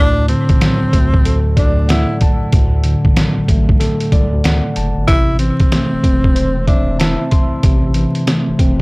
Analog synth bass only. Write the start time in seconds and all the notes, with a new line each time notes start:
Already playing: D2
0.82 D2
0.93 D2
2.53 D2
3.37 A1
3.49 A1
4.12 C2
4.33 D2
4.45 D2
4.77 F#1
4.97 G1
5.09 A1
5.93 E1
6.04 E1
7.64 A1
8.48 E1
8.59 E1